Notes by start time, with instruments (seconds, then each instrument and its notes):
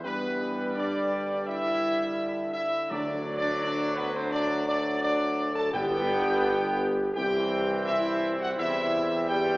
Already playing: trombone section E3
0.03 tuba G2, trombone section G3, french horn section B3, trumpet section B4
0.76 trombone section D3, french horn section D4, trumpet section D5
1.47 french horn section E4, trumpet section E5
2.54 french horn section E4, trumpet section E5
2.90 tuba D2, timpani D3, trombone section F#3, french horn section D4, trumpet section D5
3.37 french horn section D4, trumpet section D5
3.62 french horn section D4, trumpet section D5
3.96 french horn section B3, trumpet section B4
4.14 french horn section C4, trumpet section C5
4.29 french horn section D4, trumpet section D5
4.67 french horn section D4, trumpet section D5
5.00 french horn section D4, trumpet section D5
5.53 french horn section A4, trumpet section A5
5.71 tuba G1, timpani G2, trombone section D3 B3, french horn section G4, trumpet section G5
7.13 tuba C2, trombone section E3, french horn section G4, trumpet section G5
7.17 trombone section C4
7.86 french horn section E4, trumpet section E5
8.38 french horn section F#4, trumpet section F#5
8.56 tuba E2, trombone section G3, french horn section E4, trumpet section E5
9.29 trombone section B3, french horn section G4, trumpet section G5